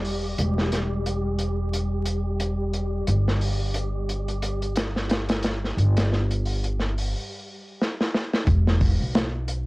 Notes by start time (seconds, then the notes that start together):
Already playing: E1 G3 G4
0.05 open hi-hat
0.38 E1, closed hi-hat
0.58 snare
0.72 snare, closed hi-hat
1.06 closed hi-hat
1.39 closed hi-hat
1.73 closed hi-hat
2.06 closed hi-hat
2.40 closed hi-hat
2.73 closed hi-hat
3.07 G1, closed hi-hat
3.28 snare
3.41 open hi-hat
3.74 closed hi-hat
4.09 closed hi-hat
4.28 closed hi-hat
4.42 closed hi-hat
4.62 closed hi-hat
4.76 snare, closed hi-hat
4.96 snare
5.10 snare, closed hi-hat
5.29 snare, closed hi-hat
5.43 snare, closed hi-hat
5.65 snare
5.77 G1, closed hi-hat
5.97 snare, closed hi-hat
6.13 snare
6.31 closed hi-hat
6.45 open hi-hat
6.64 closed hi-hat
6.79 snare
6.98 open hi-hat
7.81 snare
8.00 snare
8.14 snare
8.33 snare
8.47 E1, kick, closed hi-hat
8.67 snare
8.81 kick, open hi-hat
9.01 B1
9.15 snare, closed hi-hat
9.48 closed hi-hat